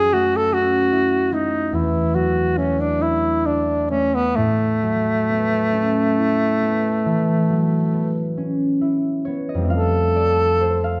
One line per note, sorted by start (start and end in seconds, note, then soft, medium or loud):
0.00 1.76 F#2 soft
0.00 2.14 F#3 soft
0.00 0.51 C#4 soft
0.00 0.15 G#4 medium
0.13 1.31 A3 soft
0.13 0.38 F#4 soft
0.36 0.55 A4 soft
0.52 1.76 C#4 soft
0.52 1.35 F#4 medium
0.92 3.45 E4 soft
1.32 2.56 A3 soft
1.32 1.76 D#4 soft
1.73 4.40 E2 soft
1.73 2.17 E4 soft
2.15 4.81 F#3 soft
2.15 2.59 F#4 soft
2.58 3.90 A3 soft
2.58 2.82 C#4 soft
2.80 3.03 D4 soft
3.00 4.40 D4 soft
3.00 3.47 E4 soft
3.46 3.90 D4 soft
3.46 6.17 E4 soft
3.90 7.81 A3 soft
3.90 4.17 C#4 soft
4.15 4.38 B3 soft
4.36 8.27 A2 soft
4.36 8.38 A3 soft
4.83 7.49 F#3 soft
5.29 6.60 B3 soft
5.73 8.36 C#4 soft
6.19 8.80 E4 soft
6.61 7.92 B3 soft
7.05 9.78 E3 soft
7.50 9.78 F#3 soft
7.93 9.26 B3 soft
8.37 9.78 C#4 soft
8.81 9.78 E4 soft
9.25 9.78 B3 soft
9.25 9.76 C#5 soft
9.49 9.89 D#5 soft
9.54 11.00 F2 soft
9.54 11.00 G3 soft
9.61 11.00 A3 soft
9.61 11.00 C4 soft
9.68 11.00 F4 soft
9.68 10.83 F5 medium
9.74 11.00 A4 soft
10.16 10.93 D5 medium
10.61 11.00 C5 soft
10.84 11.00 F5 medium